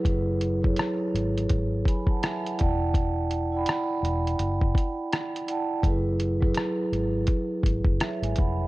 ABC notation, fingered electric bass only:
X:1
M:4/4
L:1/16
Q:"Swing 16ths" 1/4=83
K:F#m
V:1 name="Fingered electric bass" clef=bass
F,,,4 z2 G,,,2 G,,,2 z4 E,,,2- | E,,,4 z2 E,,,2 F,,,2 z6 | F,,,4 z2 G,,,2 z2 G,,, F,,, z G,,, ^E,,,2 |]